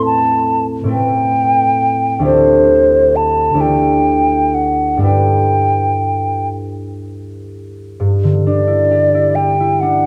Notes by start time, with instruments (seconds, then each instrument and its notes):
Already playing: harp A2 C4 E4 A4 B4
0.05 flute A5
0.84 harp A2 C4 E4
0.89 harp A4 B4, flute G5
2.19 harp D2 D4 E4
2.24 harp G4 A4, flute C5
3.16 flute A5
3.54 harp D2 D4 E4
3.59 harp G4 A4, flute G5
4.54 flute F#5
4.97 harp G2 D4 E4
5.02 harp A4 B4, flute G5
8.00 harp G2
8.24 harp D3
8.45 harp D4, flute D5
8.67 harp E4
8.91 harp G4
9.15 harp E4
9.35 harp G4, flute G5
9.60 harp E4
9.81 harp D4, flute F#5